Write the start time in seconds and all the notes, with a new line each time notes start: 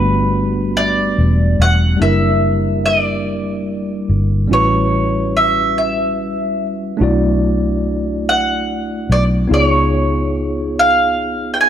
Already playing: G1 G3 A3 B3 D4 F#4 B4
0.77 D5
1.18 E1
1.59 E1 F#5
1.96 G3 A#3 D4
2.01 F#1 E4 A#4 E5
2.86 D5
4.09 G1
4.48 A1 G3 C#4 E4
4.52 F#4 B4 C#5
5.37 E5
5.78 E5
6.97 B1 A3 D4 E4
7.02 F#4 D5
8.29 F#5
9.10 B1 D5
9.47 C#2 B3 D#4 F4
9.52 G#4 C#5 D5
9.65 C#5
10.79 F5
11.54 G5
11.61 G#5